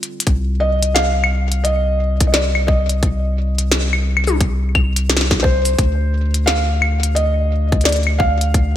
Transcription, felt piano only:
0.60 D#5
0.95 F5
1.64 D#5
2.27 D#5
2.32 D5
2.67 D#5
5.43 C5
6.46 F5
7.15 D#5
7.84 D5
8.19 F5

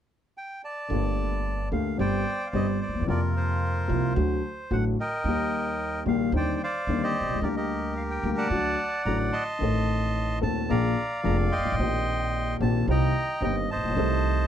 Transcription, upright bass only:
0.90 G1
1.72 D2
1.99 G1
2.53 G1
2.88 D2
2.95 D#2
3.01 E2
3.08 F2
3.90 C2
4.16 D2
4.71 A1
5.24 D#2
6.06 A#1
6.32 D#2
6.87 D#2
7.21 B1
7.27 C2
7.35 C#2
7.41 D2
8.23 D2
8.50 D2
9.05 A1
9.61 A1
10.43 D#2
10.70 A#1
11.24 F1
11.58 G1
11.65 G#1
11.72 A1
11.79 A#1
12.60 A#1
12.87 C2
13.41 G1
13.76 A1
13.83 A#1
13.90 B1
13.97 C2

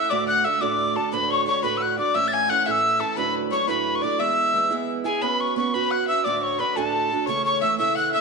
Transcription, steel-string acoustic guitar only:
Already playing: A3 C#4
0.10 D2 A2 D3 A3 D4 F#4
0.44 D3 A3 D4 F#4
0.61 D2 A2 D3 A3 D4 F#4
0.95 D3 A3 D4 F#4
1.12 D2 A2 D3 A3 D4 F#4
1.46 D3 A3 D4 F#4
1.63 D2 A2 D3 A3 D4 F#4
1.97 D3 A3 D4 F#4
2.14 A2 E3 A3 C#4 E4
2.48 E3 A3 C#4 E4
2.65 A2 E3 A3 C#4 E4
2.99 A3 C#4 E4
3.16 D2 A2 F#3 A3 D4 E4
3.51 F#3 A3 D4 E4
3.68 D2 A2 F#3 A3 D4 E4
4.02 F#3 A3 D4 E4
4.18 E3 G#3 B3 E4
4.53 E3 G#3 B3 E4
4.70 E3 G#3 B3 E4
5.04 G#3 B3 E4
5.21 B3 C#4 F#4 B4
5.56 B3 C#4 F#4 B4
5.74 B3 C#4 F#4 B4
6.08 C#4 F#4 B4
6.25 D2 A2 D3 A3 D4 F#4
6.59 D3 A3 D4 F#4
6.76 D2 A2 D3 A3 D4 F#4
7.11 D3 A3 D4 F#4
7.27 C#3 E3 A3 C#4 E4
7.62 E3 A3 C#4 E4
7.79 C#3 E3 A3 C#4 E4
8.13 A3 C#4 E4

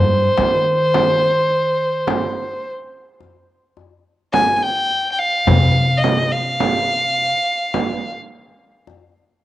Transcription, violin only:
Already playing: C5
4.33 G#5
4.56 G#5
4.63 G5
5.12 G5
5.19 F5
5.98 D#5
6.32 F5

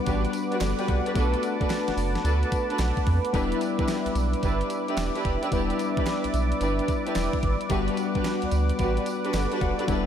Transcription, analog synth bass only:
0.07 A1
0.61 G1
0.89 C2
1.15 B1
1.61 F#1
1.88 F#1
1.97 F#1
2.25 D2
2.79 B1
3.07 F2
3.34 E1
3.79 B1
4.06 B1
4.15 B1
4.43 G1
4.97 E1
5.25 F1
5.52 E1
5.97 B1
6.25 B1
6.34 B1
6.61 G1
7.16 E1
7.43 G#1
7.70 G1
8.15 D2
8.43 D2
8.52 D2
8.79 A1
9.34 G1
9.61 F1
9.88 E1

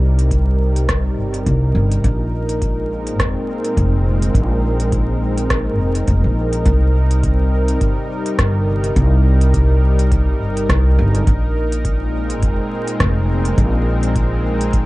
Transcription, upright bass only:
Already playing: C2
1.17 G1
1.46 C2
1.75 G1
2.04 A#1
3.19 F1
3.77 F1
4.35 A#1
5.79 F1
6.08 F1
6.24 A#1
6.66 C2
7.81 G1
8.39 G1
8.96 C2
10.40 G1
10.69 C2
10.99 G1
11.27 A#1
12.42 F1
13.00 F1
13.58 A#1

